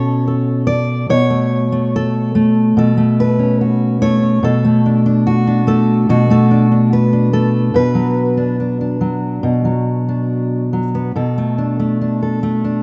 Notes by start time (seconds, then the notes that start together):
Already playing: B2 C#4 F#4 A4 C#5
0.28 A4
0.67 D5
1.10 B2 C#5
1.30 A3
1.72 A3
1.96 A4
2.35 A3
2.77 B2 A4
2.97 A3
3.20 B4
3.39 C#4
3.61 F#4
4.02 A3 C#5
4.23 C#4
4.43 B2 A4
4.65 A3
4.86 D4
5.06 D4
5.27 F#4
5.47 D4
5.67 A3 A4
6.09 B2 F#4
6.30 A3 A4
6.51 D4
6.72 D4
6.93 B4
7.13 D4
7.33 A3 A4
7.74 B2 B4
7.95 F#3
8.37 D4
8.60 D4
8.81 D4
9.01 F#3
9.43 B2
9.65 F#3
10.09 D4
10.73 F#3
10.95 B3
11.16 B2 A4
11.38 A3
11.58 D4
11.79 A3
12.01 D4
12.22 A4
12.43 A3
12.64 D4